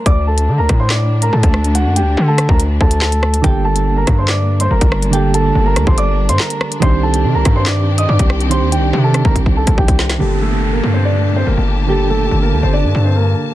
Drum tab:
HH |x--x--x-x--x-x-x|x-x---x-x--x-x-x|x--x--x-x--x-x-x|x-x---x-x--x-x-x|
CP |--------x-------|------------x---|--------x-------|------------x---|
SD |------r-o-----r-|------r-----o-r-|------r-o-----r-|------r-----o-r-|
BD |o-----o------o--|-------o--o-----|o-----o------o--|-------o--------|

HH |x--x--x-x--x-x-x|x-x---x-x--x-x-x|----------------|----------------|
CP |--------x-------|----------------|----------------|----------------|
SD |------r-o-----r-|------r-------oo|----------------|----------------|
BD |o-----o------o--|-------ooo-ooo--|----------------|----------------|